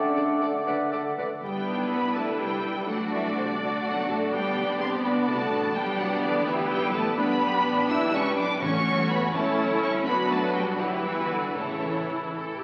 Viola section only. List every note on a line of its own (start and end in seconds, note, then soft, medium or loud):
0.16 0.24 A4 soft
0.41 0.49 A4 soft
0.66 0.74 A4 medium
0.92 1.00 A4 soft
1.18 1.26 A4 soft
1.43 2.12 B3 medium
1.43 2.85 E4 medium
2.15 2.89 G3 medium
2.88 3.59 A3 medium
2.88 3.59 D4 medium
3.60 4.31 A3 medium
3.60 5.01 D4 medium
4.32 5.74 B3 medium
5.03 5.74 D4 medium
5.75 7.15 B3 medium
5.75 6.45 D4 medium
6.47 7.18 E4 medium
7.18 8.62 D4 medium
8.62 9.34 A3 medium
8.62 9.33 C#4 medium
9.34 10.07 C#4 medium
9.34 10.06 E4 medium
10.07 10.76 F#3 medium
10.07 10.76 D4 medium
10.80 11.54 E3 medium
10.80 11.55 E4 medium
11.55 12.64 E3 medium
11.55 12.64 E4 medium